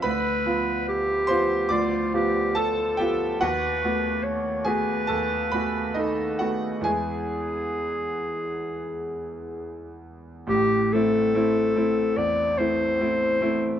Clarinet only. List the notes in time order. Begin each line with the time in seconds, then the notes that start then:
0.04 B4
0.88 G4
1.72 F4
2.15 G4
2.57 A4
3.41 B4
4.23 C#5
4.67 B4
6.00 A4
6.88 G#4
10.49 G4
10.93 A4
12.17 D5
12.58 C5